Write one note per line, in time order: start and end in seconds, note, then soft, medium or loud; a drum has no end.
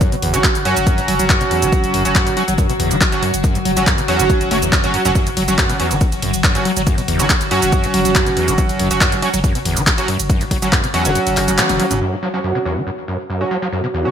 0.00 0.10 F#2 loud
0.00 12.06 F#3 medium
0.00 12.06 F#4 medium
0.00 kick loud
0.00 closed hi-hat medium
0.00 shaker medium
0.12 0.22 F#1 medium
0.12 0.16 B2 medium
0.12 closed hi-hat medium
0.12 shaker soft
0.22 0.33 F#1 loud
0.22 0.35 E2 loud
0.22 open hi-hat loud
0.34 0.44 F#1 medium
0.34 0.39 F#3 medium
0.34 0.44 F#3 medium
0.34 0.44 C#4 medium
0.34 0.44 F#4 medium
0.34 closed hi-hat medium
0.34 shaker medium
0.44 0.48 F#2 medium
0.44 kick loud
0.44 clap loud
0.44 closed hi-hat medium
0.44 shaker medium
0.55 0.65 F#1 medium
0.55 closed hi-hat medium
0.55 shaker soft
0.65 0.75 F#2 medium
0.65 2.02 F#3 medium
0.65 2.02 C#4 medium
0.65 2.02 F#4 loud
0.65 open hi-hat loud
0.77 0.87 F#1 medium
0.77 closed hi-hat medium
0.77 shaker medium
0.87 1.00 F#2 medium
0.87 kick loud
0.87 closed hi-hat medium
0.87 shaker medium
0.98 1.07 F#1 medium
0.98 1.01 A2 medium
0.98 closed hi-hat medium
0.98 shaker soft
1.08 1.19 F#1 loud
1.08 1.14 F#3 loud
1.08 open hi-hat loud
1.19 1.29 F#1 medium
1.19 1.25 F#3 loud
1.19 closed hi-hat medium
1.19 shaker medium
1.30 1.39 F#2 loud
1.30 kick loud
1.30 clap loud
1.30 closed hi-hat medium
1.30 shaker medium
1.41 1.51 F#1 medium
1.41 1.44 B2 medium
1.41 closed hi-hat medium
1.41 shaker soft
1.51 1.64 E2 loud
1.51 open hi-hat loud
1.62 1.72 F#1 medium
1.62 1.68 F#3 medium
1.62 closed hi-hat medium
1.62 shaker medium
1.72 1.76 F#2 medium
1.72 kick loud
1.72 closed hi-hat medium
1.72 shaker medium
1.84 1.93 F#1 medium
1.84 closed hi-hat medium
1.84 shaker soft
1.94 2.05 F#1 loud
1.94 2.03 F#2 medium
1.94 open hi-hat loud
2.05 2.15 F#1 medium
2.05 2.34 F#3 medium
2.05 2.34 C#4 medium
2.05 2.34 F#4 medium
2.05 closed hi-hat medium
2.05 shaker medium
2.15 2.28 F#2 medium
2.15 kick loud
2.15 clap loud
2.15 closed hi-hat medium
2.15 shaker medium
2.27 2.37 F#1 medium
2.27 2.30 A2 medium
2.27 closed hi-hat medium
2.27 shaker soft
2.37 2.43 F#3 loud
2.37 2.44 F#3 medium
2.37 2.44 C#4 medium
2.37 2.44 F#4 medium
2.37 open hi-hat loud
2.48 2.58 F#1 medium
2.48 2.54 F#3 loud
2.48 closed hi-hat medium
2.48 shaker medium
2.58 2.67 F#2 loud
2.58 kick loud
2.58 closed hi-hat medium
2.58 shaker medium
2.69 2.79 F#1 medium
2.69 2.73 B2 medium
2.69 closed hi-hat medium
2.69 shaker soft
2.80 2.90 F#1 loud
2.80 2.92 E2 loud
2.80 open hi-hat loud
2.91 3.01 F#1 medium
2.91 2.96 F#3 medium
2.91 closed hi-hat medium
2.91 shaker medium
3.01 3.05 F#2 medium
3.01 kick loud
3.01 clap loud
3.01 closed hi-hat medium
3.01 shaker medium
3.12 3.22 F#1 medium
3.12 3.23 F#3 medium
3.12 3.23 C#4 medium
3.12 3.23 F#4 medium
3.12 closed hi-hat medium
3.12 shaker soft
3.22 3.32 F#2 medium
3.22 open hi-hat loud
3.34 3.44 F#1 medium
3.34 closed hi-hat medium
3.34 shaker medium
3.44 3.56 F#2 medium
3.44 kick loud
3.44 closed hi-hat medium
3.44 shaker medium
3.55 3.65 F#1 medium
3.55 3.58 A2 medium
3.55 closed hi-hat medium
3.55 shaker soft
3.65 3.76 F#1 loud
3.65 3.71 F#3 loud
3.65 open hi-hat loud
3.76 3.87 F#1 medium
3.76 3.82 F#3 loud
3.76 3.87 F#3 medium
3.76 3.87 C#4 medium
3.76 3.87 F#4 medium
3.76 closed hi-hat medium
3.76 shaker medium
3.87 3.96 F#2 loud
3.87 kick loud
3.87 clap loud
3.87 closed hi-hat medium
3.87 shaker medium
3.98 4.08 F#1 medium
3.98 4.01 B2 medium
3.98 closed hi-hat medium
3.98 shaker soft
4.08 4.21 E2 loud
4.08 4.49 F#3 loud
4.08 4.49 C#4 medium
4.08 4.49 F#4 loud
4.08 open hi-hat loud
4.19 4.30 F#1 medium
4.19 4.25 F#3 medium
4.19 closed hi-hat medium
4.19 shaker medium
4.30 4.33 F#2 medium
4.30 kick loud
4.30 closed hi-hat medium
4.30 shaker medium
4.41 4.51 F#1 medium
4.41 closed hi-hat medium
4.41 shaker soft
4.51 4.62 F#1 loud
4.51 4.58 F#3 medium
4.51 4.57 A3 loud
4.51 4.58 C#4 medium
4.51 4.58 F#4 medium
4.51 open hi-hat loud
4.62 4.72 F#1 medium
4.62 4.74 E2 medium
4.62 closed hi-hat medium
4.62 shaker medium
4.72 4.82 F#2 medium
4.72 kick loud
4.72 clap loud
4.72 closed hi-hat medium
4.72 shaker medium
4.84 4.94 F#1 medium
4.84 4.87 F#2 medium
4.84 5.02 F#3 loud
4.84 5.02 C#4 medium
4.84 5.02 F#4 loud
4.84 closed hi-hat medium
4.84 shaker soft
4.94 4.98 F#2 medium
4.94 open hi-hat loud
5.05 5.15 F#1 medium
5.05 5.11 F#2 loud
5.05 5.12 F#3 loud
5.05 5.12 C#4 medium
5.05 5.12 F#4 loud
5.05 closed hi-hat medium
5.05 shaker medium
5.15 5.28 F#2 medium
5.15 kick loud
5.15 closed hi-hat medium
5.15 ride medium
5.15 shaker medium
5.27 5.36 F#1 medium
5.27 5.30 A2 medium
5.27 closed hi-hat medium
5.27 ride medium
5.27 shaker soft
5.37 5.47 F#1 loud
5.37 5.43 F#3 loud
5.37 open hi-hat loud
5.37 ride medium
5.48 5.58 F#1 medium
5.48 5.54 F#3 loud
5.48 5.77 F#3 medium
5.48 5.77 C#4 medium
5.48 5.77 F#4 medium
5.48 closed hi-hat medium
5.48 ride medium
5.48 shaker medium
5.58 5.68 F#2 loud
5.58 kick loud
5.58 clap loud
5.58 closed hi-hat medium
5.58 ride medium
5.58 shaker medium
5.69 5.79 F#1 medium
5.69 5.73 B2 medium
5.69 closed hi-hat medium
5.69 ride medium
5.69 shaker soft
5.80 5.92 E2 loud
5.80 5.87 F#3 medium
5.80 5.87 C#4 medium
5.80 5.87 F#4 medium
5.80 open hi-hat loud
5.80 ride medium
5.91 6.01 F#1 medium
5.91 5.96 F#3 medium
5.91 closed hi-hat medium
5.91 ride medium
5.91 shaker medium
6.01 6.05 F#2 medium
6.01 kick loud
6.01 closed hi-hat medium
6.01 ride medium
6.01 shaker medium
6.12 6.22 F#1 medium
6.12 closed hi-hat medium
6.12 ride medium
6.12 shaker soft
6.22 6.33 F#1 loud
6.22 6.32 F#2 medium
6.22 open hi-hat loud
6.22 ride medium
6.34 6.44 F#1 medium
6.34 closed hi-hat medium
6.34 ride medium
6.34 shaker medium
6.44 6.57 F#2 medium
6.44 kick loud
6.44 clap loud
6.44 closed hi-hat medium
6.44 ride medium
6.44 shaker medium
6.55 6.65 F#1 medium
6.55 6.59 A2 medium
6.55 6.65 F#3 medium
6.55 6.65 C#4 medium
6.55 6.65 F#4 medium
6.55 closed hi-hat medium
6.55 ride medium
6.55 shaker soft
6.65 6.72 F#3 loud
6.65 open hi-hat medium
6.65 ride medium
6.76 6.87 F#1 medium
6.76 6.82 F#3 loud
6.76 closed hi-hat medium
6.76 ride medium
6.76 shaker medium
6.87 6.96 F#2 loud
6.87 kick loud
6.87 closed hi-hat medium
6.87 ride medium
6.87 shaker medium
6.98 7.07 F#1 medium
6.98 7.01 B2 medium
6.98 closed hi-hat medium
6.98 ride medium
6.98 shaker soft
7.08 7.19 F#1 loud
7.08 7.21 E2 loud
7.08 open hi-hat loud
7.08 ride medium
7.19 7.29 F#1 medium
7.19 7.30 F#3 medium
7.19 7.25 F#3 medium
7.19 7.30 C#4 medium
7.19 7.30 F#4 medium
7.19 closed hi-hat medium
7.19 ride medium
7.19 shaker medium
7.30 7.33 F#2 medium
7.30 kick loud
7.30 clap loud
7.30 closed hi-hat medium
7.30 ride medium
7.30 shaker medium
7.41 7.51 F#1 medium
7.41 closed hi-hat medium
7.41 ride medium
7.41 shaker soft
7.51 7.60 F#2 medium
7.51 8.88 F#3 loud
7.51 8.88 C#4 medium
7.51 8.88 F#4 loud
7.51 open hi-hat medium
7.51 ride medium
7.62 7.72 F#1 medium
7.62 closed hi-hat medium
7.62 ride medium
7.62 shaker medium
7.72 7.85 F#2 medium
7.72 kick loud
7.72 closed hi-hat medium
7.72 ride medium
7.72 shaker medium
7.84 7.93 F#1 medium
7.84 7.87 A2 medium
7.84 closed hi-hat medium
7.84 ride medium
7.84 shaker soft
7.94 8.04 F#1 loud
7.94 8.00 F#3 loud
7.94 open hi-hat loud
7.94 ride medium
8.05 8.15 F#1 medium
8.05 8.11 F#3 loud
8.05 closed hi-hat medium
8.05 ride medium
8.05 shaker medium
8.15 8.25 F#2 loud
8.15 kick loud
8.15 clap loud
8.15 closed hi-hat medium
8.15 ride medium
8.15 shaker medium
8.27 8.37 F#1 medium
8.27 8.30 B2 medium
8.27 closed hi-hat medium
8.27 ride medium
8.27 shaker soft
8.37 8.50 E2 loud
8.37 open hi-hat medium
8.37 ride medium
8.48 8.58 F#1 medium
8.48 8.54 F#3 medium
8.48 closed hi-hat medium
8.48 ride medium
8.48 shaker medium
8.58 8.62 F#2 medium
8.58 kick loud
8.58 closed hi-hat medium
8.58 ride medium
8.58 shaker medium
8.69 8.79 F#1 medium
8.69 closed hi-hat medium
8.69 ride medium
8.69 shaker soft
8.79 8.90 F#1 loud
8.79 8.89 F#2 medium
8.79 open hi-hat loud
8.79 ride medium
8.91 9.01 F#1 medium
8.91 9.20 F#3 medium
8.91 9.20 C#4 medium
8.91 9.20 F#4 medium
8.91 closed hi-hat medium
8.91 ride medium
8.91 shaker medium
9.01 9.14 F#2 medium
9.01 kick loud
9.01 clap loud
9.01 closed hi-hat medium
9.01 ride medium
9.01 shaker medium
9.12 9.22 F#1 medium
9.12 9.16 A2 medium
9.12 closed hi-hat medium
9.12 ride medium
9.12 shaker soft
9.22 9.29 F#3 loud
9.22 9.30 F#3 medium
9.22 9.30 C#4 medium
9.22 9.30 F#4 medium
9.22 open hi-hat medium
9.22 ride medium
9.34 9.44 F#1 medium
9.34 9.39 F#3 loud
9.34 closed hi-hat medium
9.34 ride medium
9.34 shaker medium
9.44 9.53 F#2 loud
9.44 kick loud
9.44 closed hi-hat medium
9.44 ride medium
9.44 shaker medium
9.55 9.65 F#1 medium
9.55 9.59 B2 medium
9.55 closed hi-hat medium
9.55 ride medium
9.55 shaker soft
9.65 9.76 F#1 loud
9.65 9.78 E2 loud
9.65 open hi-hat loud
9.65 ride medium
9.76 9.86 F#1 medium
9.76 9.82 F#3 medium
9.76 closed hi-hat medium
9.76 ride medium
9.76 shaker medium
9.87 9.90 F#2 medium
9.87 kick loud
9.87 clap loud
9.87 closed hi-hat medium
9.87 ride medium
9.87 shaker medium
9.98 10.08 F#1 medium
9.98 10.08 F#3 medium
9.98 10.08 C#4 medium
9.98 10.08 F#4 medium
9.98 closed hi-hat medium
9.98 ride medium
9.98 shaker soft
10.08 10.17 F#2 medium
10.08 open hi-hat medium
10.08 ride medium
10.19 10.29 F#1 medium
10.19 closed hi-hat medium
10.19 ride medium
10.19 shaker medium
10.30 10.42 F#2 medium
10.30 kick loud
10.30 closed hi-hat medium
10.30 ride medium
10.30 shaker medium
10.41 10.50 F#1 medium
10.41 10.44 A2 medium
10.41 closed hi-hat medium
10.41 ride medium
10.41 shaker soft
10.51 10.62 F#1 loud
10.51 10.57 F#3 loud
10.51 kick medium
10.51 open hi-hat loud
10.51 ride medium
10.62 10.72 F#1 medium
10.62 10.68 F#3 loud
10.62 10.73 F#3 medium
10.62 10.73 C#4 medium
10.62 10.73 F#4 medium
10.62 closed hi-hat medium
10.62 ride medium
10.62 shaker medium
10.72 10.82 F#2 loud
10.72 kick loud
10.72 clap loud
10.72 closed hi-hat medium
10.72 ride medium
10.72 shaker medium
10.84 10.94 F#1 medium
10.84 10.87 B2 medium
10.84 closed hi-hat medium
10.84 ride medium
10.84 shaker soft
10.94 11.07 E2 loud
10.94 12.00 F#3 loud
10.94 12.00 C#4 medium
10.94 12.00 F#4 loud
10.94 open hi-hat medium
10.94 ride medium
11.05 11.15 F#1 medium
11.05 11.11 F#3 medium
11.05 closed hi-hat medium
11.05 ride medium
11.05 shaker medium
11.15 11.19 F#2 medium
11.15 closed hi-hat medium
11.15 ride medium
11.15 shaker medium
11.27 11.36 F#1 medium
11.27 closed hi-hat medium
11.27 ride medium
11.27 shaker soft
11.37 11.47 F#1 loud
11.37 clap medium
11.37 open hi-hat loud
11.37 ride medium
11.48 11.58 F#1 medium
11.48 11.51 F#3 loud
11.48 closed hi-hat medium
11.48 ride medium
11.48 shaker medium
11.58 11.62 A2 loud
11.58 clap loud
11.58 closed hi-hat medium
11.58 high tom medium
11.58 ride medium
11.58 shaker medium
11.69 11.79 F#1 medium
11.69 closed hi-hat medium
11.69 high tom medium
11.69 ride medium
11.69 shaker soft
11.80 11.86 F#3 loud
11.80 open hi-hat medium
11.80 ride medium
11.91 12.01 F#1 medium
11.91 11.94 C#3 medium
11.91 closed hi-hat medium
11.91 mid tom medium
11.91 ride medium
11.91 shaker medium
12.01 12.14 F#2 medium
12.01 14.11 F#4 medium
12.10 12.16 A2 medium
12.10 14.11 C#5 medium
12.22 12.29 F#3 loud
12.34 12.63 F#3 medium
12.34 12.39 F#3 loud
12.34 12.63 C#4 medium
12.34 12.63 F#4 medium
12.44 12.53 F#2 loud
12.50 14.11 F#5 medium
12.55 12.59 B2 medium
12.65 12.78 E2 loud
12.65 12.72 F#3 medium
12.65 12.72 C#4 medium
12.65 12.72 F#4 medium
12.77 12.82 F#3 medium
12.87 12.90 F#2 medium
13.08 13.17 F#2 medium
13.30 13.42 F#2 medium
13.41 13.44 A2 medium
13.41 13.51 F#3 medium
13.41 13.51 C#4 medium
13.41 13.51 F#4 medium
13.51 13.57 F#3 loud
13.62 13.68 F#3 loud
13.72 13.82 F#2 loud
13.84 13.87 B2 medium
13.94 14.07 E2 loud
14.05 14.11 F#3 medium
14.05 14.11 C#4 medium
14.05 14.11 F#4 medium